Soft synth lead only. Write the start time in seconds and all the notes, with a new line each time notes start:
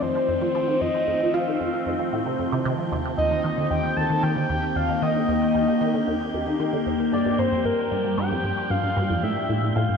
0.02 C5
0.81 D#5
1.34 F5
3.18 D#5
3.71 G5
3.97 A5
4.23 G5
4.76 F5
5.02 D#5
7.13 D5
7.39 C5
7.65 A#4
8.18 G5
8.71 F5
9.23 E5
9.76 F5